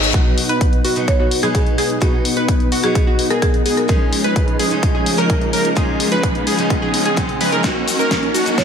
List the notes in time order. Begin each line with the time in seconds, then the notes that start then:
Already playing: G#1 G#2 G#3 B3 D#4 G#4 A#4 C#5, reverse cymbal
0.03 cabasa
0.13 B1 B2 F#3 B3 D#4 F#4, kick, closed hi-hat, riser
0.38 open hi-hat
0.49 B1 B3 D#4 B4, closed hi-hat
0.61 kick, closed hi-hat
0.73 closed hi-hat
0.84 B1 B3 D#4 F#4, open hi-hat
0.95 B2 F#3 B3 D#4 F#4, closed hi-hat
1.08 C#5, kick, closed hi-hat
1.20 B1 B3 D#4 F#4 C#5
1.31 open hi-hat
1.42 B1 B2 F#3 B3 D#4 G#4 B4, closed hi-hat
1.55 G#4, kick, closed hi-hat
1.67 closed hi-hat
1.78 B1 B3 D#4 G#4, open hi-hat
1.90 closed hi-hat
2.00 B1 B2 F#3 B3 D#4 F#4, kick, closed hi-hat
2.25 open hi-hat
2.37 B1 B3 D#4 B4, closed hi-hat
2.48 kick, closed hi-hat
2.60 closed hi-hat
2.72 B1 B3 D#4 F#4, open hi-hat
2.82 B2 F#3 B3 D#4 F#4 G#4, closed hi-hat
2.95 kick, closed hi-hat
3.07 B1 B3 D#4 F#4
3.19 open hi-hat
3.30 B1 B3 D#4 G#4 A#4, closed hi-hat
3.42 G#4, kick, closed hi-hat
3.54 closed hi-hat
3.66 B1 B3 D#4 G#4, open hi-hat
3.77 A#4, closed hi-hat
3.88 C#2 C#3 F3 G#3 C#4 D#4 F4 G#4, kick, closed hi-hat
4.13 open hi-hat
4.24 C#2 F3 G#3 C#4 D#4 B4, closed hi-hat
4.36 kick, closed hi-hat
4.48 closed hi-hat
4.59 C#2 F3 G#3 C#4 D#4 G#4, open hi-hat
4.70 C#3 G#3 C#4 D#4 F4, closed hi-hat
4.83 kick, closed hi-hat
4.95 C#2 F3 G#3 C#4 D#4 G#4
5.06 open hi-hat
5.17 C#2 C#3 F3 G#3 C#4 D#4 A#4, closed hi-hat
5.30 kick, closed hi-hat
5.41 closed hi-hat
5.53 C#2 F3 G#3 C#4 D#4 A#4, open hi-hat
5.65 closed hi-hat
5.75 C#2 C#3 F3 G#3 C#4 D#4 F4 G#4, kick, closed hi-hat
6.00 open hi-hat
6.12 C#2 F3 G#3 C#4 D#4 B4, closed hi-hat
6.23 kick, closed hi-hat
6.35 closed hi-hat
6.47 C#2 F3 G#3 C#4 D#4 G#4, open hi-hat
6.57 C#3 G#3 C#4 D#4 F4, closed hi-hat
6.70 kick, closed hi-hat
6.82 C#2 F3 G#3 C#4 D#4 G#4
6.94 open hi-hat
7.05 C#2 F3 G#3 C#4 D#4 G#4, closed hi-hat
7.16 C#3 G#3 C#4 D#4 G#4, kick, closed hi-hat
7.29 closed hi-hat
7.41 C#2 F3 G#3 C#4 D#4 B4, open hi-hat
7.52 C#2 F3 G#3 C#4 D#4 A#4, closed hi-hat
7.63 F#3 A#3 D#4 F#4, kick, snare, closed hi-hat, cabasa
7.88 open hi-hat, cabasa
7.99 D#1 A#3 D#4 A#4, closed hi-hat, cabasa
8.11 kick, snare, closed hi-hat, cabasa
8.23 closed hi-hat
8.34 D#1 A#3 D#4 F#4, open hi-hat, cabasa
8.45 F#3 A#3 D#4 F#4, closed hi-hat, cabasa
8.58 C#5, kick, snare, closed hi-hat, cabasa